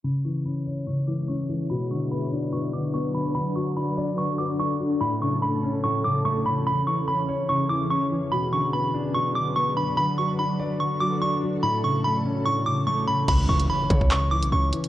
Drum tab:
CC |----------------|----------------|----------------|----------------|
HH |----------------|----------------|----------------|----------------|
CP |----------------|----------------|----------------|----------------|
BD |----------------|----------------|----------------|----------------|

CC |----------------|----------------|----------------|----------------|
HH |----------------|----------------|----------------|----------------|
CP |----------------|----------------|----------------|----------------|
BD |----------------|----------------|----------------|----------------|

CC |x---------------|
HH |x--x--x-x--x--xx|
CP |--------x-------|
BD |o-----oo--------|